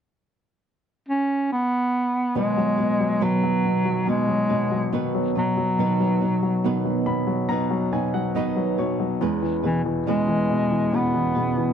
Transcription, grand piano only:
2.35 B2
2.57 F#3
2.79 B2
3.00 F#3
3.21 B2
3.43 F#3
3.65 B2
3.85 F#3
4.07 B2
4.28 F#3
4.50 B2
4.71 F#3
4.93 B2
5.15 F#3
5.36 B2
5.57 F#3
5.79 B2
6.00 F#3
6.21 B2
6.43 F#3
6.64 B2
6.85 F#3
7.06 B2 B5
7.27 F#3
7.49 B2 A#5
7.70 F#3
7.93 B2 G#5
8.14 F#3 F#5
8.35 B2 D#5
8.57 F#3
8.79 B2 C#5
9.00 F#3
9.21 E2
9.42 E3
9.64 B2
9.85 E3
10.07 B2
10.28 E3
10.50 B2
10.71 E3
10.92 B2
11.14 E3
11.35 B2
11.57 E3

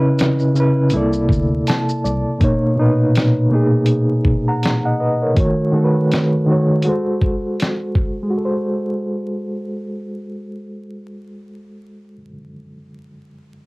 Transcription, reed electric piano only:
Already playing: C#3 C#4 E4 B4 D#5
0.54 C#3 C#4 E4
0.60 B4
0.91 C3 A#3 E4
0.95 A4 D5
1.68 A5
2.04 D5
2.39 B2 A#3 D#4
2.44 C#5
2.76 A#2 B2 D#4
2.81 B4
3.50 B2 A#3 D#4
3.55 G#4
4.48 F#5 A#5
4.85 D#5 F#5
5.00 B4 D#5
5.22 A#4 C#5
5.35 D#3 A3 F#4
5.40 C#5
5.72 D#3 A3 F#4
5.78 A4
5.84 B4
6.46 D#3 A3 F#4
6.52 C#5
6.83 G#3 F#4
6.87 A4 C5
8.22 G#3
8.30 F#4
8.38 A4
8.45 C5

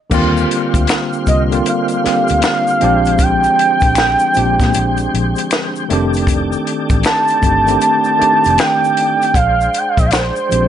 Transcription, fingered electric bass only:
0.12 D#2
0.75 D2
1.29 C2
2.06 muted fingered electric bass stroke
2.31 D2
2.83 A#1
3.83 A#1
4.37 A#1
4.61 A#2
4.76 A#1
5.14 A#1
5.91 F1
6.91 A1
7.44 G1
8.22 muted fingered electric bass stroke
8.46 F1
9.36 A#1
9.98 A#1
10.52 A#1

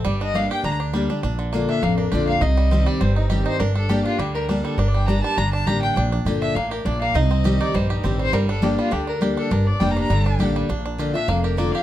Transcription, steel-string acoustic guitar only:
0.05 G2
0.34 G3 A#3 D4 G4
0.64 D3
0.93 G3 A#3 D4 G4
1.09 D4 G4
1.24 A#2
1.53 D3 A#3 D4 F4
1.83 F2
2.13 D3 A#3 D4 F4
2.42 C3
2.71 D#3 G3 C4 G4
3.01 G2
3.30 D#3 G3 C4 G4
3.60 G2
3.89 G3 A#3 D4 G4
4.19 D3
4.49 G3 A#3 D4 G4
4.79 G2
5.08 G3 A#3 D4 G4
5.38 D3
5.67 G3 A#3 D4 G4
5.97 A#2
6.26 D3 A#3 D4 F4
6.57 A2
6.86 A#2
7.16 C3
7.44 D#3 G3 C4 G4
7.75 G2
8.03 D#3 G3 C4 G4
8.33 G2
8.62 G3 A#3 D4 G4
8.91 D3
9.21 G3 A#3 D4 G4
9.51 G2
9.80 G3 A#3 D4 G4
10.10 D3
10.39 G3 A#3 D4 G4
10.70 A#2
10.98 D3 A#3 D4 F4
11.14 D4 F4
11.28 F2
11.57 D3 A#3 D4 F4
11.74 D4 F4

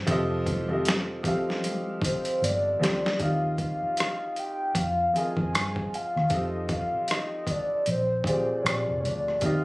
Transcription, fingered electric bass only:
0.08 F1
2.42 G1
2.81 D2
3.20 D#2
3.82 muted fingered electric bass stroke
4.75 F2
5.37 F2
5.54 G2
6.16 D#2
6.31 F2
6.94 muted fingered electric bass stroke
7.87 A#1
8.65 A#1
8.88 F1
9.04 D2
9.43 D#2

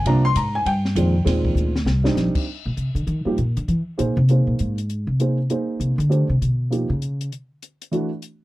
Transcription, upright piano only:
0.06 C3 F3 A#3 D4 A#5
0.25 C6
0.37 A#5
0.55 G#5
0.67 G5
0.96 A#2 D#3 G#3 C4
1.24 A#2 D#3 G#3 C4
2.04 G3 C4 D4 D#4
3.25 F3 A#3 D#4 G4
3.98 A#3 D#4 G#4 C5
4.29 A#3 D#4 G#4 C5
5.20 A#3 D#4 G#4 C5
5.50 A#3 D#4 G#4 C5
6.09 A3 D4 G4 C5
6.70 F3 A#3 D#4 G4
7.91 E3 A3 D4 F#4

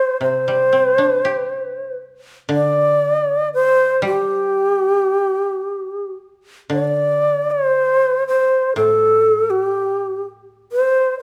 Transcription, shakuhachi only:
Already playing: C5
0.22 C5
2.54 D5
3.54 C5
4.07 G4
6.73 D5
7.51 C5
8.28 C5
8.76 A4
9.50 G4
10.72 C5

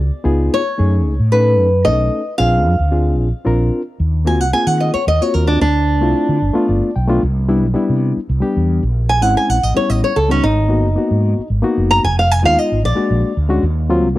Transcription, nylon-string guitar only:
0.54 C#5
1.32 B4
1.85 D#5
2.38 F5
4.27 G#5
4.41 F#5
4.53 G#5
4.67 F#5
4.80 D#5
4.94 C#5
5.08 D#5
5.22 C#5
5.34 A#4
5.47 D4
5.61 D4
9.09 G#5
9.22 F#5
9.37 G#5
9.50 F#5
9.63 D#5
9.77 C#5
9.90 D#5
10.04 C#5
10.16 A4
10.31 C#4
10.44 D#4
11.91 A#5
12.04 G#5
12.19 F5
12.31 G#5
12.45 F5
12.59 D#5
12.85 D5

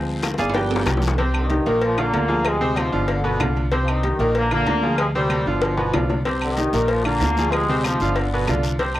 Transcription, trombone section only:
1.35 G2 D#3
1.83 A#2 F3
2.00 D3 A#3
2.47 C3 G#3
2.78 G#2 F3
3.09 F2 D3
3.82 F3
3.88 G2 D#3
4.36 D3 A#3
4.51 D3 A#3
4.99 C3 G#3
5.15 A#2 G3
5.48 B2 F3
6.42 G2 D#3
6.89 A#2 F3
7.04 D3 A#3
7.51 C3 G#3
7.83 G#2 F3
8.15 F2 D3
8.96 G2 D#3

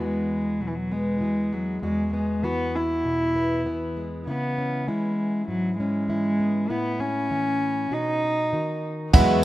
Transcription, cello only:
0.01 G#3
0.61 F#3
0.68 E3
0.75 F#3
0.92 G#3
1.54 F#3
1.83 G#3
2.14 G#3
2.44 B3
2.75 E4
4.28 B3
4.88 G#3
5.48 F#3
5.78 G#3
6.70 B3
7.01 C#4
7.93 D#4

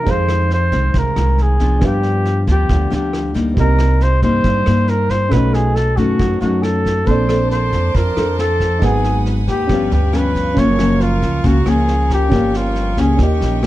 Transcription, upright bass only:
0.07 F2
0.72 C2
0.94 C2
1.16 C2
1.82 G2
2.47 D2
2.69 D2
2.92 D2
3.57 C2
4.22 G2
4.44 G2
4.67 G2
5.31 B1
5.97 F#2
6.19 F#2
6.41 F#2
7.07 A#1
7.73 F2
7.95 F2
8.17 F2
8.82 G#1
9.47 D#2
9.69 G1
9.91 D2
10.57 F#1
11.22 C#2
11.44 C#2
11.66 C#2
12.32 G1
12.97 C#2
13.19 D#2
13.41 A#1

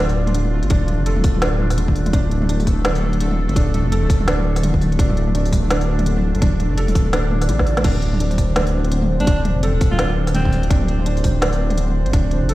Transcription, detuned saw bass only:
Already playing: D1
0.63 G1
0.70 D1
0.99 F1
1.17 D1
1.70 D#1
2.13 D1
3.49 G1
3.56 D1
3.85 F1
4.03 D1
4.99 D1
6.35 G1
6.42 D1
6.70 F1
6.88 D1
7.49 A1
7.85 D1
9.20 G1
9.27 D1
9.56 F1
9.74 D1
10.71 D1
12.06 G1
12.13 D1
12.42 F1

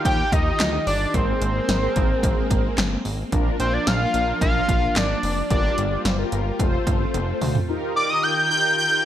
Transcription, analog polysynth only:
Already playing: D#4 F4 G4
1.14 C4 G#4 A#4
1.55 C4 G#4 A#4
1.82 C4 G#4 A#4
3.32 D4 F4 A#4
3.60 D4 F4 A#4
4.14 D4 F4 A#4
5.50 F4 G4 A#4
5.91 F4 G4 C5
6.19 F4 G4 A#4
6.60 F4 A4 C5
7.69 D#4 F4 G4 A#4
7.96 D#4 F4 G4 A#4
8.51 D#4 F4 G4 A#4

